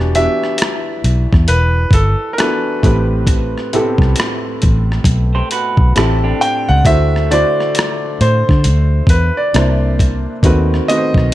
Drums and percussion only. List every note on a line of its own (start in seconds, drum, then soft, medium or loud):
0.15 closed hi-hat medium
0.44 cross-stick soft
0.58 closed hi-hat medium
0.62 cross-stick loud
1.04 closed hi-hat soft
1.33 kick medium
1.33 cross-stick soft
1.48 closed hi-hat medium
1.91 kick medium
1.91 closed hi-hat medium
2.38 cross-stick medium
2.38 closed hi-hat medium
2.83 kick medium
2.83 closed hi-hat medium
3.27 kick medium
3.27 closed hi-hat medium
3.58 cross-stick soft
3.73 closed hi-hat medium
3.98 kick medium
3.98 cross-stick soft
4.16 closed hi-hat medium
4.20 cross-stick loud
4.62 kick medium
4.62 closed hi-hat soft
4.92 cross-stick soft
5.04 kick medium
5.04 closed hi-hat medium
5.51 closed hi-hat medium
5.77 kick loud
5.96 cross-stick medium
5.96 closed hi-hat medium
6.42 closed hi-hat soft
6.85 kick medium
6.85 closed hi-hat medium
7.16 cross-stick soft
7.32 closed hi-hat medium
7.60 cross-stick soft
7.75 closed hi-hat medium
7.79 cross-stick loud
8.21 closed hi-hat medium
8.49 kick medium
8.49 cross-stick soft
8.64 closed hi-hat medium
9.07 kick medium
9.07 closed hi-hat medium
9.54 cross-stick medium
9.54 closed hi-hat medium
9.99 kick medium
9.99 closed hi-hat medium
10.43 kick medium
10.43 closed hi-hat medium
10.74 cross-stick soft
10.90 closed hi-hat medium
11.14 kick medium
11.14 cross-stick soft